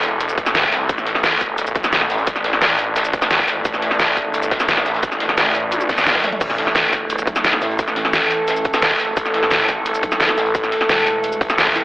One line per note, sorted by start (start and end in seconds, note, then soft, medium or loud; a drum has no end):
0.00 0.36 E1 loud
0.00 11.84 E3 medium
0.00 11.84 A3 medium
0.00 0.87 A4 medium
0.00 closed hi-hat medium
0.00 shaker soft
0.21 closed hi-hat medium
0.21 shaker soft
0.29 shaker medium
0.38 0.71 A1 loud
0.38 kick loud
0.38 closed hi-hat medium
0.38 shaker soft
0.46 snare medium
0.46 shaker medium
0.55 snare loud
0.55 closed hi-hat medium
0.55 shaker soft
0.62 kick medium
0.62 snare soft
0.72 0.88 C2 loud
0.72 snare soft
0.72 closed hi-hat medium
0.72 open hi-hat medium
0.72 shaker soft
0.89 1.74 A1 loud
0.89 6.39 D4 medium
0.89 kick loud
0.89 closed hi-hat medium
0.89 shaker medium
0.98 snare soft
0.98 shaker soft
1.06 snare soft
1.06 closed hi-hat medium
1.15 snare soft
1.15 closed hi-hat soft
1.23 snare loud
1.23 closed hi-hat medium
1.23 shaker soft
1.41 kick medium
1.41 closed hi-hat medium
1.41 shaker soft
1.58 closed hi-hat medium
1.58 closed hi-hat loud
1.58 shaker medium
1.66 closed hi-hat soft
1.66 shaker medium
1.75 2.09 B1 loud
1.75 kick loud
1.75 closed hi-hat medium
1.75 shaker soft
1.84 snare medium
1.84 shaker medium
1.93 snare loud
1.93 closed hi-hat medium
1.93 shaker medium
2.01 snare soft
2.01 snare medium
2.10 2.43 A1 loud
2.10 snare medium
2.10 closed hi-hat medium
2.10 open hi-hat medium
2.10 shaker soft
2.18 closed hi-hat soft
2.27 kick loud
2.27 closed hi-hat loud
2.27 shaker medium
2.36 snare soft
2.36 shaker soft
2.44 3.29 A1 loud
2.44 snare medium
2.44 closed hi-hat medium
2.53 snare soft
2.62 snare loud
2.62 closed hi-hat medium
2.62 shaker medium
2.79 closed hi-hat medium
2.79 shaker soft
2.96 snare loud
2.96 closed hi-hat medium
2.96 shaker medium
3.05 shaker medium
3.13 kick loud
3.13 closed hi-hat medium
3.13 shaker soft
3.22 snare loud
3.22 snare medium
3.22 closed hi-hat medium
3.22 shaker medium
3.31 3.64 A1 medium
3.31 snare loud
3.31 closed hi-hat medium
3.31 shaker medium
3.39 kick medium
3.39 closed hi-hat medium
3.48 snare soft
3.48 closed hi-hat medium
3.48 open hi-hat medium
3.48 shaker soft
3.65 4.25 A1 loud
3.65 kick loud
3.65 closed hi-hat loud
3.65 shaker medium
3.74 snare soft
3.74 shaker soft
3.82 snare soft
3.82 closed hi-hat medium
3.91 snare soft
3.91 closed hi-hat soft
3.99 snare loud
3.99 closed hi-hat loud
3.99 closed hi-hat medium
3.99 shaker medium
4.17 kick medium
4.17 closed hi-hat medium
4.17 shaker soft
4.25 4.50 G#1 loud
4.34 closed hi-hat medium
4.34 shaker medium
4.42 closed hi-hat soft
4.42 shaker medium
4.51 4.84 B1 medium
4.51 kick loud
4.51 snare loud
4.51 closed hi-hat medium
4.51 shaker soft
4.60 snare soft
4.60 snare medium
4.60 shaker medium
4.68 snare soft
4.68 snare loud
4.68 closed hi-hat loud
4.68 closed hi-hat medium
4.68 shaker medium
4.77 snare loud
4.77 snare medium
4.77 closed hi-hat medium
4.86 5.19 A1 loud
4.86 snare soft
4.86 open hi-hat medium
4.86 shaker soft
4.94 snare soft
4.94 closed hi-hat medium
5.02 kick loud
5.02 closed hi-hat medium
5.02 closed hi-hat loud
5.02 shaker medium
5.12 snare soft
5.12 shaker soft
5.20 5.36 E1 loud
5.20 snare soft
5.20 closed hi-hat medium
5.29 snare soft
5.29 closed hi-hat soft
5.38 5.71 A1 loud
5.38 snare loud
5.38 closed hi-hat loud
5.38 closed hi-hat medium
5.38 shaker medium
5.55 closed hi-hat medium
5.55 shaker soft
5.72 6.22 A1 loud
5.72 closed hi-hat medium
5.72 closed hi-hat loud
5.72 high tom medium
5.72 shaker medium
5.80 closed hi-hat soft
5.80 high tom medium
5.80 shaker medium
5.89 kick loud
5.89 snare soft
5.89 closed hi-hat medium
5.89 shaker soft
5.98 snare medium
5.98 shaker medium
6.07 snare loud
6.07 snare medium
6.07 closed hi-hat medium
6.07 closed hi-hat loud
6.07 mid tom medium
6.07 shaker medium
6.11 snare medium
6.11 closed hi-hat medium
6.14 kick medium
6.14 snare medium
6.14 closed hi-hat medium
6.19 snare loud
6.19 closed hi-hat medium
6.24 snare loud
6.24 closed hi-hat medium
6.24 mid tom loud
6.24 open hi-hat medium
6.24 shaker soft
6.32 closed hi-hat soft
6.32 mid tom medium
6.40 7.26 A1 loud
6.40 11.84 A4 medium
6.40 kick loud
6.40 closed hi-hat medium
6.40 closed hi-hat loud
6.40 crash medium
6.40 shaker medium
6.50 snare soft
6.50 shaker soft
6.58 snare soft
6.58 closed hi-hat medium
6.66 snare soft
6.66 closed hi-hat soft
6.75 snare loud
6.75 closed hi-hat loud
6.75 shaker soft
6.93 kick medium
6.93 closed hi-hat medium
6.93 shaker soft
7.10 closed hi-hat loud
7.10 closed hi-hat medium
7.10 shaker soft
7.18 closed hi-hat soft
7.18 shaker medium
7.27 7.60 B1 loud
7.27 kick loud
7.27 closed hi-hat medium
7.27 shaker soft
7.36 snare medium
7.36 shaker medium
7.44 snare loud
7.44 closed hi-hat medium
7.44 closed hi-hat loud
7.44 shaker soft
7.53 snare soft
7.53 snare medium
7.61 7.95 A1 loud
7.61 snare medium
7.61 closed hi-hat medium
7.61 open hi-hat medium
7.61 shaker soft
7.71 closed hi-hat soft
7.79 kick loud
7.79 closed hi-hat loud
7.79 closed hi-hat medium
7.79 shaker soft
7.88 snare soft
7.88 shaker soft
7.96 8.81 A1 loud
7.96 snare soft
7.96 closed hi-hat medium
8.05 snare medium
8.13 snare loud
8.13 closed hi-hat medium
8.13 shaker soft
8.31 closed hi-hat medium
8.31 shaker soft
8.48 snare loud
8.48 closed hi-hat medium
8.48 shaker soft
8.56 shaker medium
8.64 kick loud
8.64 closed hi-hat medium
8.64 shaker soft
8.74 snare loud
8.74 snare medium
8.74 closed hi-hat medium
8.74 shaker medium
8.82 9.15 A1 loud
8.82 snare loud
8.82 closed hi-hat medium
8.82 shaker soft
8.91 kick medium
8.91 closed hi-hat medium
8.99 snare soft
8.99 closed hi-hat medium
8.99 open hi-hat medium
8.99 shaker soft
9.17 9.77 A1 loud
9.17 kick loud
9.17 closed hi-hat medium
9.17 shaker soft
9.25 snare soft
9.25 shaker soft
9.34 snare soft
9.34 closed hi-hat medium
9.43 snare soft
9.43 closed hi-hat soft
9.50 snare loud
9.50 closed hi-hat medium
9.50 shaker soft
9.69 kick medium
9.69 closed hi-hat medium
9.69 shaker soft
9.77 10.02 G#1 loud
9.86 closed hi-hat medium
9.86 shaker soft
9.95 closed hi-hat soft
9.95 shaker medium
10.02 10.36 B1 loud
10.02 kick loud
10.02 closed hi-hat medium
10.02 shaker soft
10.12 snare medium
10.12 shaker medium
10.20 snare loud
10.20 closed hi-hat medium
10.20 shaker soft
10.29 snare soft
10.29 snare medium
10.38 10.71 A1 loud
10.38 snare medium
10.38 closed hi-hat medium
10.38 open hi-hat medium
10.38 shaker soft
10.46 closed hi-hat soft
10.55 kick loud
10.55 closed hi-hat medium
10.55 shaker medium
10.63 snare soft
10.63 shaker soft
10.72 snare soft
10.72 closed hi-hat medium
10.81 snare soft
10.89 11.40 E1 loud
10.89 snare loud
10.89 closed hi-hat medium
10.89 shaker soft
11.07 closed hi-hat medium
11.07 shaker soft
11.24 closed hi-hat medium
11.24 shaker soft
11.32 closed hi-hat soft
11.32 shaker medium
11.41 11.74 A1 loud
11.41 kick loud
11.41 closed hi-hat medium
11.41 shaker soft
11.50 snare medium
11.50 shaker medium
11.58 snare loud
11.58 closed hi-hat medium
11.58 shaker soft
11.67 kick medium
11.67 snare soft
11.75 11.84 C2 loud
11.75 snare soft
11.75 closed hi-hat medium
11.75 open hi-hat medium
11.75 shaker soft